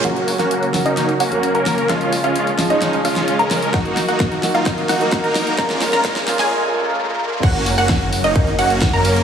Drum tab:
CC |----------------|----------------|----------------|----------------|
RD |----------------|----------------|----------------|----------------|
HH |xxoxxxoxxxoxxxox|xxoxxxoxxxoxxxox|xxoxxxoxxxoxxxox|xxoxxxoo--------|
SD |o--o--o-o-----o-|o-----o-o--o--o-|o-o-o-o-o-o-o-o-|oooooooo--------|
BD |----------------|----------------|o---o---o---o---|o---o-----------|

CC |x---------------|
RD |x-x---x-x-x-x-x-|
HH |xxoxxxoxxxoxxxox|
SD |----o-------o---|
BD |o---o---o---o---|